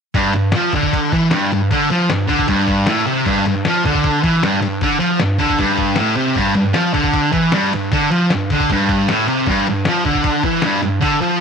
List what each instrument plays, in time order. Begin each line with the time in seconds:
0.14 distorted electric guitar G2, kick, ride
0.33 distorted electric guitar G2, ride
0.52 distorted electric guitar F3, snare, ride
0.73 distorted electric guitar D3, kick, ride
0.83 kick
0.93 kick, ride
1.12 distorted electric guitar E3, kick, ride
1.31 distorted electric guitar G2, snare, ride
1.52 distorted electric guitar G2, ride
1.71 distorted electric guitar D3, kick, ride
1.90 distorted electric guitar F3, ride
2.10 distorted electric guitar G2, snare, ride
2.28 distorted electric guitar D3, kick, ride
2.39 kick
2.48 distorted electric guitar G2, kick, ride
2.68 kick, ride
2.86 distorted electric guitar A2, snare, ride
3.07 distorted electric guitar C3, ride
3.26 distorted electric guitar G2, kick, crash
3.46 distorted electric guitar G2, ride
3.65 distorted electric guitar F3, snare, ride
3.85 distorted electric guitar D3, kick, ride
3.94 kick
4.04 kick, ride
4.24 distorted electric guitar E3, kick, ride
4.43 distorted electric guitar G2, snare, ride
4.62 distorted electric guitar G2, ride
4.81 distorted electric guitar D3, kick, ride
5.00 distorted electric guitar F3, ride
5.19 distorted electric guitar G2, snare, ride
5.39 distorted electric guitar D3, kick, ride
5.50 kick
5.59 distorted electric guitar G2, kick, ride
5.77 kick, ride
5.96 distorted electric guitar A2, snare, ride
6.16 distorted electric guitar C3, ride
6.35 distorted electric guitar G2, kick, crash
6.55 distorted electric guitar G2, ride
6.73 distorted electric guitar F3, snare, ride
6.94 distorted electric guitar D3, kick, ride
7.04 kick
7.13 kick, ride
7.32 distorted electric guitar E3, kick, ride
7.52 distorted electric guitar G2, snare, ride
7.73 distorted electric guitar G2, ride
7.92 distorted electric guitar D3, kick, ride
8.11 distorted electric guitar F3, ride
8.30 distorted electric guitar G2, snare, ride
8.50 distorted electric guitar D3, kick, ride
8.60 kick
8.70 distorted electric guitar G2, kick, ride
8.89 kick, ride
9.09 distorted electric guitar A2, snare, ride
9.28 distorted electric guitar C3, ride
9.46 distorted electric guitar G2, kick, crash
9.67 distorted electric guitar G2, ride
9.85 distorted electric guitar F3, snare, ride
10.05 distorted electric guitar D3, kick, ride
10.15 kick
10.24 kick, ride
10.43 distorted electric guitar E3, kick, ride
10.62 distorted electric guitar G2, snare, ride
10.83 distorted electric guitar G2, ride
11.01 distorted electric guitar D3, kick, ride
11.21 distorted electric guitar F3, ride